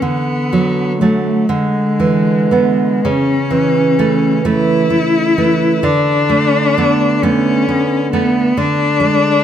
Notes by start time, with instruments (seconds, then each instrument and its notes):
0.02 nylon-string guitar D3, cello B3
0.53 nylon-string guitar F#3
0.99 nylon-string guitar F#3 A3, cello A3
1.49 nylon-string guitar D3, cello G#3
2.00 nylon-string guitar E3
2.51 nylon-string guitar E3 B3
3.05 nylon-string guitar C#3, cello C#4
3.51 nylon-string guitar E3
3.99 nylon-string guitar E3 A3
4.45 nylon-string guitar E3 A3, cello E4
4.90 nylon-string guitar A3
5.38 nylon-string guitar E3 A3
5.83 nylon-string guitar D3, cello D4
6.30 nylon-string guitar A3
6.78 nylon-string guitar A3 B3
7.22 nylon-string guitar A3 B3, cello C#4
7.68 nylon-string guitar B3
8.13 nylon-string guitar A3 B3, cello B3
8.57 nylon-string guitar D3, cello D4
9.00 nylon-string guitar G#3